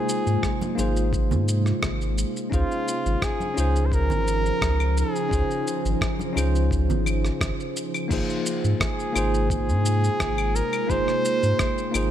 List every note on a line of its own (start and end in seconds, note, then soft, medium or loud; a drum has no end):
0.00 2.48 C3 medium
0.00 2.48 G#3 medium
0.00 0.73 A#3 medium
0.00 2.48 A#3 medium
0.00 0.73 D#4 medium
0.00 0.74 F4 medium
0.00 2.48 F4 medium
0.00 0.75 G#4 loud
0.00 0.79 G#4 medium
0.00 0.80 C5 medium
0.09 shaker medium
0.26 0.37 G#2 medium
0.26 shaker soft
0.43 kick loud
0.43 cross-stick medium
0.43 shaker soft
0.61 high conga medium
0.61 shaker soft
0.75 1.33 G#1 medium
0.75 2.47 A#3 medium
0.75 2.48 D#4 medium
0.75 2.48 F4 medium
0.75 high conga medium
0.75 shaker medium
0.79 2.49 G#4 medium
0.79 2.50 C5 medium
0.97 shaker soft
1.13 kick medium
1.13 shaker soft
1.31 1.72 G#2 medium
1.31 low conga medium
1.31 shaker soft
1.48 shaker medium
1.66 cross-stick soft
1.66 shaker soft
1.82 2.24 G#1 medium
1.82 kick loud
1.82 cross-stick medium
1.82 shaker soft
2.01 shaker soft
2.18 shaker medium
2.37 shaker soft
2.50 2.64 C#2 loud
2.50 8.06 C#3 medium
2.50 8.06 F3 medium
2.50 3.52 C#4 medium
2.50 3.52 D#4 medium
2.50 8.06 D#4 medium
2.50 3.53 F4 medium
2.50 3.25 F4 loud
2.50 8.06 C5 medium
2.50 kick medium
2.50 shaker soft
2.54 3.54 G#4 medium
2.54 3.54 C5 medium
2.71 shaker soft
2.88 shaker medium
3.06 3.16 G#1 loud
3.06 shaker soft
3.22 3.87 G#4 loud
3.22 kick medium
3.22 cross-stick medium
3.22 shaker soft
3.40 high conga medium
3.40 shaker soft
3.54 4.11 C#2 medium
3.54 5.26 C#4 medium
3.54 5.27 D#4 medium
3.54 5.28 F4 medium
3.54 5.28 G#4 medium
3.54 shaker medium
3.60 5.29 C5 medium
3.76 shaker soft
3.86 3.95 C5 medium
3.92 4.97 A#4 loud
3.92 kick medium
3.92 shaker soft
4.10 4.51 G#1 medium
4.10 low conga medium
4.10 shaker soft
4.28 shaker medium
4.46 shaker soft
4.61 5.03 C#2 loud
4.61 kick loud
4.61 cross-stick loud
4.61 shaker soft
4.80 claves medium
4.80 shaker soft
4.98 6.34 G#4 loud
4.98 shaker medium
5.16 shaker soft
5.29 5.43 C#2 loud
5.29 6.31 C#4 medium
5.29 6.31 D#4 medium
5.29 6.32 F4 medium
5.29 kick medium
5.33 6.33 G#4 medium
5.33 6.33 C5 medium
5.33 shaker soft
5.51 shaker soft
5.68 shaker medium
5.85 5.95 G#1 loud
5.85 shaker soft
6.01 kick medium
6.01 cross-stick medium
6.01 shaker soft
6.19 high conga medium
6.19 shaker soft
6.33 6.91 C#2 medium
6.33 8.05 C#4 medium
6.33 8.06 D#4 medium
6.33 8.06 F4 medium
6.33 high conga medium
6.37 8.07 G#4 medium
6.37 8.08 C5 medium
6.37 claves medium
6.37 shaker medium
6.55 shaker soft
6.71 kick medium
6.71 shaker soft
6.89 7.30 G#1 medium
6.89 low conga medium
6.89 shaker soft
7.06 claves medium
7.06 shaker medium
7.25 cross-stick soft
7.25 shaker soft
7.41 7.52 G#1 loud
7.41 kick loud
7.41 cross-stick loud
7.41 shaker soft
7.60 shaker soft
7.77 shaker medium
7.94 claves medium
7.94 shaker soft
8.08 8.22 G#1 loud
8.08 12.11 C3 medium
8.08 12.11 G#3 medium
8.08 9.10 A#3 medium
8.08 12.11 A#3 medium
8.08 9.11 D#4 medium
8.08 9.11 F4 medium
8.08 10.87 F4 medium
8.08 kick loud
8.08 crash loud
8.08 shaker soft
8.12 9.12 G#4 medium
8.12 9.13 C5 medium
8.29 shaker soft
8.46 shaker medium
8.64 8.74 G#2 medium
8.64 shaker soft
8.80 9.47 G#4 medium
8.80 kick loud
8.80 cross-stick loud
8.80 shaker soft
9.00 shaker soft
9.13 9.70 G#1 medium
9.13 10.84 A#3 medium
9.13 10.85 D#4 medium
9.13 10.86 F4 medium
9.13 claves medium
9.13 shaker medium
9.17 10.86 G#4 medium
9.17 10.87 C5 medium
9.34 shaker soft
9.50 10.57 G#4 loud
9.50 kick loud
9.50 shaker soft
9.68 10.09 G#2 medium
9.68 shaker soft
9.86 shaker medium
10.04 shaker soft
10.20 10.62 G#1 loud
10.20 kick loud
10.20 cross-stick loud
10.20 shaker soft
10.38 claves medium
10.38 shaker soft
10.55 10.91 A#4 loud
10.55 shaker medium
10.73 claves medium
10.73 shaker soft
10.87 11.01 G#1 loud
10.87 11.89 A#3 medium
10.87 11.90 D#4 medium
10.87 11.90 F4 medium
10.87 12.11 C5 loud
10.87 12.11 G5 medium
10.87 kick loud
10.87 shaker soft
10.91 11.91 G#4 medium
10.91 11.92 C5 medium
11.08 cross-stick soft
11.08 shaker soft
11.25 shaker medium
11.43 11.53 G#2 medium
11.43 shaker soft
11.59 kick loud
11.59 cross-stick loud
11.59 shaker soft
11.78 shaker soft
11.92 12.11 G#1 medium
11.92 12.11 A#3 medium
11.92 12.11 D#4 medium
11.92 12.11 F4 medium
11.92 claves medium
11.92 shaker medium
11.96 12.11 G#4 medium
11.96 12.11 C5 medium